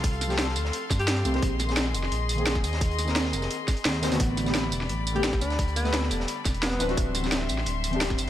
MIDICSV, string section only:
0, 0, Header, 1, 2, 480
1, 0, Start_track
1, 0, Tempo, 346821
1, 53, Time_signature, 4, 2, 24, 8
1, 11486, End_track
2, 0, Start_track
2, 0, Title_t, "String section"
2, 0, Program_c, 0, 48
2, 0, Note_on_c, 0, 69, 78
2, 0, Note_on_c, 0, 77, 73
2, 0, Note_on_c, 0, 84, 84
2, 1934, Note_off_c, 0, 69, 0
2, 1935, Note_off_c, 0, 77, 0
2, 1973, Note_on_c, 0, 68, 80
2, 1973, Note_on_c, 0, 75, 73
2, 5758, Note_off_c, 0, 84, 0
2, 5774, Note_off_c, 0, 68, 0
2, 5774, Note_off_c, 0, 75, 0
2, 5810, Note_on_c, 0, 83, 86
2, 5811, Note_on_c, 0, 55, 79
2, 5811, Note_on_c, 0, 74, 70
2, 9375, Note_off_c, 0, 74, 0
2, 9375, Note_off_c, 0, 83, 0
2, 9412, Note_on_c, 0, 76, 72
2, 9412, Note_on_c, 0, 84, 88
2, 11486, Note_off_c, 0, 55, 0
2, 11486, Note_off_c, 0, 76, 0
2, 11486, Note_off_c, 0, 84, 0
2, 11486, End_track
0, 0, End_of_file